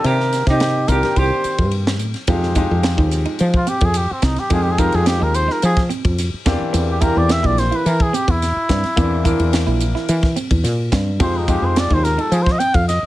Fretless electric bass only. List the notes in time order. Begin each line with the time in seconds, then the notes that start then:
0.04 C3
0.47 C3
0.89 C2
1.16 C2
1.44 muted fretless electric bass stroke
1.59 G2
2.01 A2
2.28 F2
2.71 F2
2.98 D#2
3.40 F3
3.82 F2
4.11 muted fretless electric bass stroke
4.22 C2
4.39 muted fretless electric bass stroke
4.51 F2
4.94 F2
5.21 D#2
5.63 F3
6.05 F2
6.34 muted fretless electric bass stroke
6.46 E2
6.61 muted fretless electric bass stroke
6.74 E2
7.16 E2
7.44 A#1
7.86 E3
8.28 E2
8.56 muted fretless electric bass stroke
8.69 G2
8.84 muted fretless electric bass stroke
8.97 E2
9.40 E2
9.67 A#1
10.09 E3
10.51 E2
10.64 A#2
10.92 G2
11.20 F2
11.62 F2
11.91 D#2
12.32 F3
12.75 F2
13.03 muted fretless electric bass stroke